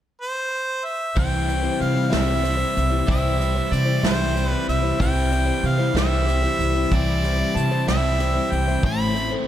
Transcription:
0.21 C5
0.85 E5
1.15 C2 C3 E3 G3 C4 E4 C5 G5, kick, closed hi-hat
1.46 G3 C4 E4 C5, closed hi-hat
1.63 G3 C4 E4 C5
1.80 C3 F5, closed hi-hat
1.95 G3 C4 E4 C5
2.09 C2 C3 E3 G3 C4 E4 C5, snare, closed hi-hat
2.13 C3 E3 E5
2.42 G3 C4 E4 C5, closed hi-hat
2.57 G3 C4 E4 C5
2.77 C2, closed hi-hat
2.90 G3 C4 E4 C5
3.06 C2 C3 E3 G3 C4 E4 C5, kick, closed hi-hat
3.10 E5
3.39 G3 C4 E4 C5, closed hi-hat
3.55 G3 C4 E4 C5
3.72 C3 D5, closed hi-hat
3.86 G3 C4 E4 C5
4.03 C2 C3 E3 G3 C4 E4 C5, snare, closed hi-hat
4.07 C3 C5
4.35 G3 C4 E4 C5, closed hi-hat
4.49 C4 E4 B4 C5
4.53 G3
4.68 C2 E5, closed hi-hat
4.82 G3 C4 E4 C5
4.99 C2 C3 E3 G3 C4 E4 C5 G5, kick, closed hi-hat
5.30 G3 C4 E4 C5, closed hi-hat
5.46 G3 C4 E4 C5
5.63 C3 F5, closed hi-hat
5.78 G3 C4 E4 C5
5.94 C2 C3 E3 G3 C4 E4 C5, snare, closed hi-hat
5.98 C3 E5
6.26 G3 C4 E4 C5, closed hi-hat
6.43 G3 C4 E4 C5
6.59 C2, closed hi-hat
6.75 G3 C4 E4 C5
6.91 C2 C3 E3 G3 C4 E4 C5 D5, kick, closed hi-hat
7.23 G3 C4 E4 C5, closed hi-hat
7.38 G3 C4 E4 C5
7.55 C3 A5, closed hi-hat
7.71 G3 C4 E4 C5
7.87 C2 C3 E3 G3 C4 E4 C5 E5, snare, closed hi-hat
8.19 G3 C4 E4 C5, closed hi-hat
8.34 G3 C4 E4 C5
8.52 C2 G5, closed hi-hat
8.68 G3 C4 E4 C5
8.83 A1 A2 E3 A3 C4 E4 C5 B5, kick, closed hi-hat
9.14 A3 C4 E4 C5, closed hi-hat
9.31 A3 C4 E4 C5

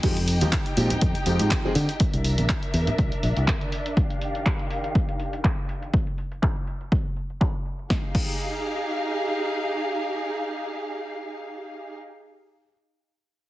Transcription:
0.03 F2 F3 G#3 C4 D#4 G4 G5, kick, closed hi-hat, crash, tambourine
0.17 closed hi-hat
0.28 open hi-hat, tambourine
0.41 D#2 F3 G#3 C4 D#4 G4, closed hi-hat, tambourine, high conga
0.52 kick, clap, closed hi-hat, tambourine
0.66 closed hi-hat
0.77 A#2 F3 G#3 C4 D#4 G4, open hi-hat, tambourine
0.90 closed hi-hat, tambourine, low conga
1.01 F2, kick, closed hi-hat, tambourine
1.15 closed hi-hat, tambourine
1.26 F2 F3 G#3 C4 D#4 G4, open hi-hat, tambourine
1.39 G#2, closed hi-hat, tambourine
1.51 kick, clap, closed hi-hat, tambourine, high conga
1.64 F3 G#3 C4 D#4 G#4, tambourine
1.75 D3, open hi-hat, tambourine
1.89 closed hi-hat, tambourine
2.00 D4 A#4 E5, muted fingered electric bass stroke, kick, closed hi-hat, tambourine
2.14 C2, closed hi-hat
2.24 open hi-hat, tambourine
2.38 A#1, closed hi-hat, tambourine, high conga
2.49 kick, clap, closed hi-hat
2.63 closed hi-hat
2.74 E2, open hi-hat, tambourine
2.87 closed hi-hat, tambourine, low conga
2.98 C2, kick, closed hi-hat, tambourine
3.12 closed hi-hat, tambourine
3.23 A#1, open hi-hat, tambourine
3.37 C2, closed hi-hat, tambourine
3.47 kick, clap, closed hi-hat, tambourine, high conga
3.60 closed hi-hat, tambourine
3.72 open hi-hat, tambourine
3.86 closed hi-hat, tambourine
3.97 D#3 G4 F5, kick, closed hi-hat
4.10 closed hi-hat
4.21 open hi-hat
4.35 closed hi-hat
4.46 kick, clap, closed hi-hat
4.59 closed hi-hat
4.71 open hi-hat
4.84 closed hi-hat
4.95 kick, closed hi-hat
5.09 closed hi-hat
5.20 open hi-hat
5.33 closed hi-hat
5.44 kick, clap, closed hi-hat
5.69 open hi-hat
5.83 closed hi-hat
5.93 kick, closed hi-hat
6.07 closed hi-hat
6.18 open hi-hat
6.32 closed hi-hat
6.43 kick, clap
6.56 closed hi-hat
6.67 open hi-hat
6.81 closed hi-hat
6.92 kick
7.05 closed hi-hat
7.16 open hi-hat
7.30 closed hi-hat
7.41 kick, clap
7.55 closed hi-hat
7.66 open hi-hat
7.79 closed hi-hat
7.90 D#4 G4 G#4 F5, kick, snare
8.15 kick, crash

